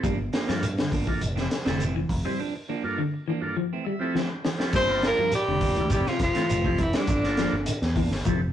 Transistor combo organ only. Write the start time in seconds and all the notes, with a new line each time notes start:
0.47 A#3 D4 F4 A4
1.07 A#3 D4 F4 A4
1.65 C4 E4 G4 A4
2.25 C4 E4 G4 C5
2.83 G2 A#3 D4 F4 A4
3.41 G2 A#3 D4 F4 A4
3.84 E5
3.99 F3 C4 E4 G4 A4
4.15 G5
4.58 F3 C4 E4 G4 A4
4.88 A#3 D4 F4 A4
5.91 A3 C4 E4 G4
6.35 A3 C4 E4 A4
6.64 A3 C4 E4 G4
7.24 A#3 D4 F4 A4
8.26 C4 E4 G4 A4